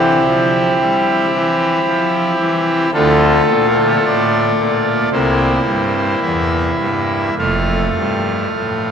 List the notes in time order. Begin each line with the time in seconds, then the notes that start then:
Already playing: E3 C4 E4 G4
0.28 F3
0.81 G3
1.35 E3
1.87 F3
2.40 E3
2.94 D2 D3 A3 F4 A4
3.50 A#2
3.68 A#4
3.78 A4
3.87 G4
3.96 A4
4.05 A2 D5
4.59 A#2
5.12 C2 C3 A#3 E4 C5
5.67 G2
6.22 E2 E5
6.80 G2
7.38 F1 F2 A3 F4 F5
7.97 G2
8.56 A2